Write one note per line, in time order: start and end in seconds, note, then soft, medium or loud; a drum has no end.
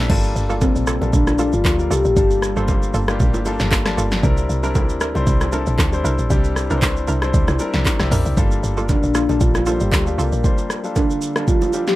0.00 0.09 G3 loud
0.00 0.12 C4 medium
0.00 0.10 D4 medium
0.00 0.12 E4 medium
0.00 0.12 G4 medium
0.00 0.10 A4 loud
0.00 0.12 A#4 loud
0.09 0.35 G1 loud
0.09 0.41 G3 medium
0.09 0.41 A#3 medium
0.09 0.41 D4 medium
0.09 0.41 F4 medium
0.09 0.42 A4 loud
0.09 kick loud
0.09 crash medium
0.09 low conga medium
0.24 shaker medium
0.36 0.74 G1 loud
0.36 shaker medium
0.49 0.90 G3 medium
0.49 0.57 A#3 medium
0.49 0.90 A#3 medium
0.49 0.90 D4 medium
0.49 0.57 F4 medium
0.49 0.90 F4 medium
0.49 0.57 A4 medium
0.49 0.90 A4 medium
0.49 shaker medium
0.61 1.15 C4 medium
0.61 kick loud
0.61 high bongo medium
0.61 low conga medium
0.61 shaker medium
0.76 1.01 A#1 medium
0.76 shaker medium
0.87 0.96 A#3 medium
0.87 0.96 F4 medium
0.87 0.96 A4 medium
0.87 cross-stick medium
0.87 shaker medium
1.01 1.13 A#1 medium
1.01 1.32 G3 medium
1.01 1.32 A#3 medium
1.01 1.32 D4 medium
1.01 1.32 F4 medium
1.01 1.32 A4 medium
1.01 high bongo medium
1.01 shaker soft
1.13 1.52 A#1 loud
1.13 1.54 D4 medium
1.13 kick loud
1.13 low conga medium
1.13 shaker medium
1.27 cross-stick medium
1.27 low bongo medium
1.27 shaker medium
1.38 1.70 G3 medium
1.38 1.70 A#3 medium
1.38 1.48 A#3 medium
1.38 1.71 D4 medium
1.38 1.48 F4 medium
1.38 1.71 F4 medium
1.38 1.48 A4 medium
1.38 1.71 A4 medium
1.38 low bongo medium
1.38 shaker medium
1.53 1.64 G1 medium
1.53 1.93 F4 loud
1.53 shaker medium
1.65 1.90 D2 medium
1.65 kick loud
1.65 clap loud
1.65 high bongo medium
1.65 shaker medium
1.79 2.09 G3 medium
1.79 2.09 A#3 medium
1.79 2.10 D4 medium
1.79 2.10 F4 medium
1.79 2.10 A#4 medium
1.79 shaker medium
1.90 2.04 C2 loud
1.90 2.00 A#3 medium
1.90 2.00 F4 medium
1.90 2.95 G4 loud
1.90 2.00 A4 medium
1.90 shaker loud
2.05 2.16 A#1 loud
2.05 shaker medium
2.16 2.55 G1 loud
2.16 2.48 G3 medium
2.16 2.48 A#3 medium
2.16 2.48 D4 medium
2.16 2.48 F4 medium
2.16 2.48 A4 medium
2.16 kick loud
2.16 low conga medium
2.16 shaker medium
2.30 shaker soft
2.42 cross-stick medium
2.42 shaker medium
2.56 2.93 G1 medium
2.56 2.97 G3 medium
2.56 2.62 A3 medium
2.56 2.64 A#3 medium
2.56 2.97 D4 medium
2.56 2.64 F4 medium
2.56 2.97 F4 medium
2.56 2.64 A4 medium
2.56 2.97 C5 loud
2.56 shaker medium
2.63 3.00 A#3 medium
2.68 kick medium
2.68 high bongo medium
2.68 low conga medium
2.68 shaker medium
2.83 shaker medium
2.94 3.19 G1 loud
2.94 3.03 A#3 medium
2.94 3.03 F4 medium
2.94 3.03 A4 medium
2.94 shaker medium
3.08 3.39 G3 medium
3.08 3.39 A#3 medium
3.08 3.39 D4 medium
3.08 3.39 F4 medium
3.08 3.39 G4 loud
3.08 cross-stick loud
3.08 high bongo medium
3.08 shaker soft
3.20 3.36 A#1 loud
3.20 kick loud
3.20 low conga medium
3.20 shaker medium
3.34 3.59 G1 loud
3.34 low bongo medium
3.34 shaker medium
3.45 3.77 G3 medium
3.45 3.77 A#3 medium
3.45 3.77 D4 medium
3.45 3.78 F4 medium
3.45 3.78 A4 loud
3.45 low bongo medium
3.45 shaker medium
3.59 3.96 G1 medium
3.59 snare medium
3.59 shaker medium
3.71 kick loud
3.71 clap loud
3.71 high bongo medium
3.71 shaker medium
3.85 4.16 G3 loud
3.85 4.16 A#3 medium
3.85 4.16 D4 medium
3.85 4.17 F4 medium
3.85 4.17 A4 loud
3.85 cross-stick medium
3.85 snare medium
3.85 shaker medium
3.97 4.23 G1 medium
3.97 4.06 A#3 medium
3.97 4.07 F4 medium
3.97 4.07 A4 medium
3.97 shaker loud
4.12 snare medium
4.12 shaker medium
4.23 4.49 C2 loud
4.23 4.55 G3 loud
4.23 4.55 C4 medium
4.23 4.55 D4 medium
4.23 4.55 E4 medium
4.23 4.55 A#4 loud
4.23 kick loud
4.23 low conga medium
4.23 shaker medium
4.37 shaker soft
4.49 4.91 C2 loud
4.49 shaker medium
4.63 5.04 G3 medium
4.63 5.04 C4 medium
4.63 4.71 D4 medium
4.63 5.04 D4 medium
4.63 4.71 E4 medium
4.63 5.04 E4 medium
4.63 4.71 A#4 medium
4.63 5.04 A#4 loud
4.63 shaker medium
4.75 kick loud
4.75 high bongo medium
4.75 low conga medium
4.75 shaker medium
4.89 5.15 D2 loud
4.89 shaker medium
5.01 5.10 D4 medium
5.01 5.10 E4 medium
5.01 5.10 A#4 medium
5.01 cross-stick medium
5.01 shaker medium
5.15 5.27 C2 medium
5.15 5.45 G3 medium
5.15 5.46 C4 medium
5.15 5.46 D4 medium
5.15 5.46 E4 medium
5.15 5.46 C5 loud
5.15 high bongo medium
5.15 shaker soft
5.27 5.66 C2 loud
5.27 kick loud
5.27 low conga medium
5.27 shaker medium
5.41 cross-stick medium
5.41 low bongo medium
5.41 shaker medium
5.52 5.84 G3 medium
5.52 5.84 C4 medium
5.52 5.62 D4 medium
5.52 5.84 D4 medium
5.52 5.62 E4 medium
5.52 5.84 E4 medium
5.52 5.85 A4 loud
5.52 5.62 A#4 medium
5.52 low bongo medium
5.52 shaker medium
5.66 5.78 A#1 loud
5.66 shaker medium
5.79 6.04 D2 loud
5.79 kick loud
5.79 clap loud
5.79 high bongo medium
5.79 shaker medium
5.92 6.23 G3 medium
5.92 6.23 C4 medium
5.92 6.23 D4 medium
5.92 6.23 E4 medium
5.92 6.24 C5 loud
5.92 shaker medium
6.04 6.18 C2 loud
6.04 6.13 D4 medium
6.04 6.13 E4 medium
6.04 6.14 A#4 medium
6.04 shaker loud
6.19 6.30 A#1 medium
6.19 shaker medium
6.30 6.69 C2 loud
6.30 6.62 G3 loud
6.30 6.62 C4 medium
6.30 6.62 D4 medium
6.30 6.62 E4 medium
6.30 6.62 G4 loud
6.30 kick loud
6.30 low conga medium
6.30 shaker medium
6.44 shaker soft
6.56 cross-stick medium
6.56 shaker medium
6.70 7.07 C2 loud
6.70 7.11 G3 medium
6.70 7.11 C4 medium
6.70 6.78 D4 medium
6.70 7.11 D4 medium
6.70 6.78 E4 medium
6.70 7.11 E4 medium
6.70 6.78 A#4 medium
6.70 6.76 B4 medium
6.70 shaker medium
6.77 7.14 C5 loud
6.82 kick medium
6.82 clap loud
6.82 high bongo medium
6.82 low conga medium
6.82 shaker medium
6.96 shaker medium
7.08 7.33 C2 loud
7.08 7.17 D4 medium
7.08 7.17 E4 medium
7.08 7.17 A#4 medium
7.08 shaker medium
7.22 7.52 G3 medium
7.22 7.53 C4 medium
7.22 7.53 D4 medium
7.22 7.53 E4 medium
7.22 7.53 C5 loud
7.22 cross-stick loud
7.22 high bongo medium
7.22 shaker soft
7.34 7.48 D2 loud
7.34 kick loud
7.34 low conga medium
7.34 shaker medium
7.48 7.59 C2 loud
7.48 cross-stick medium
7.48 low bongo medium
7.48 shaker medium
7.59 7.91 G3 medium
7.59 7.91 C4 medium
7.59 7.91 D4 medium
7.59 7.91 E4 medium
7.59 7.92 A#4 loud
7.59 low bongo medium
7.59 shaker medium
7.73 7.85 C2 loud
7.73 snare medium
7.73 shaker medium
7.86 kick loud
7.86 clap loud
7.86 high bongo medium
7.86 shaker medium
7.99 8.11 C2 medium
7.99 8.30 G3 medium
7.99 8.30 C4 medium
7.99 8.30 D4 medium
7.99 8.30 E4 medium
7.99 8.31 G4 loud
7.99 cross-stick medium
7.99 snare medium
7.99 shaker medium
8.11 8.25 A#1 loud
8.11 8.20 D4 medium
8.11 8.20 E4 medium
8.11 8.20 A#4 medium
8.11 mid tom loud
8.11 open hi-hat medium
8.11 shaker loud
8.25 8.37 C2 medium
8.25 shaker medium
8.37 8.62 G1 loud
8.37 8.69 G3 medium
8.37 8.69 A#3 medium
8.37 8.69 D4 medium
8.37 8.69 F4 medium
8.37 8.69 A4 loud
8.37 kick loud
8.37 low conga medium
8.37 shaker medium
8.51 shaker soft
8.63 9.02 G1 loud
8.63 shaker medium
8.77 9.18 G3 medium
8.77 8.85 A#3 medium
8.77 9.18 A#3 medium
8.77 9.18 D4 medium
8.77 8.85 F4 medium
8.77 9.18 F4 medium
8.77 8.85 A4 medium
8.77 8.83 A4 medium
8.77 shaker medium
8.84 9.21 A#4 medium
8.89 9.43 D4 medium
8.89 kick medium
8.89 high bongo medium
8.89 low conga medium
8.89 shaker medium
9.03 9.28 A#1 medium
9.03 shaker medium
9.15 9.24 A#3 medium
9.15 9.24 F4 medium
9.15 9.24 A4 medium
9.15 cross-stick medium
9.15 shaker medium
9.29 9.40 A#1 medium
9.29 9.59 G3 medium
9.29 9.60 A#3 medium
9.29 9.60 D4 medium
9.29 9.60 F4 medium
9.29 9.60 A4 medium
9.29 high bongo medium
9.29 shaker soft
9.41 9.80 A#1 loud
9.41 9.83 F4 medium
9.41 kick loud
9.41 low conga medium
9.41 shaker medium
9.55 cross-stick medium
9.55 low bongo medium
9.55 shaker medium
9.66 9.98 G3 medium
9.66 9.75 A#3 medium
9.66 9.98 A#3 medium
9.66 9.98 D4 medium
9.66 9.76 F4 medium
9.66 9.98 F4 medium
9.66 9.76 A4 medium
9.66 9.98 C5 medium
9.66 low bongo medium
9.66 shaker medium
9.80 9.92 G1 loud
9.80 10.21 G4 loud
9.80 shaker medium
9.92 10.17 D2 medium
9.92 kick loud
9.92 clap loud
9.92 high bongo medium
9.92 shaker medium
10.06 10.37 G3 medium
10.06 10.37 A#3 medium
10.06 10.37 D4 medium
10.06 10.37 F4 medium
10.06 10.38 G4 medium
10.06 shaker medium
10.18 10.32 C2 medium
10.18 10.27 A#3 medium
10.18 10.27 F4 medium
10.18 10.27 A4 medium
10.18 10.45 A#4 loud
10.18 shaker loud
10.32 10.44 A#1 medium
10.32 shaker medium
10.44 10.75 G3 medium
10.44 10.76 A#3 medium
10.44 10.76 D4 medium
10.44 10.76 F4 medium
10.44 10.76 C5 medium
10.44 kick loud
10.44 low conga medium
10.44 shaker medium
10.58 shaker medium
10.70 cross-stick medium
10.70 shaker medium
10.84 11.24 G3 medium
10.84 11.24 A#3 medium
10.84 11.25 D4 medium
10.84 11.25 F4 medium
10.84 11.25 A4 medium
10.84 shaker medium
10.96 11.44 D4 medium
10.96 kick medium
10.96 high bongo medium
10.96 low conga medium
10.96 shaker medium
11.10 shaker medium
11.22 shaker medium
11.35 11.66 G3 medium
11.35 11.66 A#3 medium
11.35 11.66 D4 medium
11.35 11.67 F4 medium
11.35 11.67 A4 medium
11.35 cross-stick loud
11.35 high bongo medium
11.35 shaker soft
11.48 11.85 F4 medium
11.48 kick loud
11.48 low conga medium
11.48 shaker medium
11.62 low bongo medium
11.62 shaker medium
11.73 11.96 G3 medium
11.73 11.96 A#3 medium
11.73 11.96 D4 medium
11.73 11.96 F4 medium
11.73 11.96 G4 medium
11.73 low bongo medium
11.73 shaker medium
11.87 11.96 G4 loud
11.87 snare medium
11.87 shaker medium